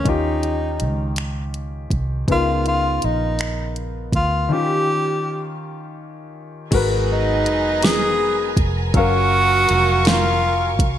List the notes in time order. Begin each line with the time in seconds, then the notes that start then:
Already playing: C#4
0.04 D#2 D#3 C#4 F4, kick, closed hi-hat
0.09 D#4 G4
0.43 closed hi-hat
0.80 C#2, closed hi-hat
1.16 finger snap, closed hi-hat
1.54 closed hi-hat
1.90 C2, kick, closed hi-hat
2.27 C#2 C#3 B3 D#4 F4, kick, closed hi-hat
2.32 F4 A#4
2.66 F4, closed hi-hat
3.02 A#1 D#4, closed hi-hat
3.39 finger snap, closed hi-hat
3.76 closed hi-hat
4.12 D2 F4, kick, closed hi-hat
4.49 D#3 C#4 F4 G4
4.54 G4
6.71 G#1 F#3 G#3 B3 D#4 F#4 G#4 A#4 B4 G#5 A#5, kick, closed hi-hat, crash
6.76 B4
7.12 D#4
7.46 F1, closed hi-hat
7.83 G#4, snare, closed hi-hat
8.57 F1, kick, closed hi-hat
8.94 F#1 F#3 C#4 F4 F#4 A#4 F5 C#6, kick, closed hi-hat
8.99 A#4
9.69 F1, closed hi-hat
10.05 F4, snare, closed hi-hat
10.79 C2, kick, closed hi-hat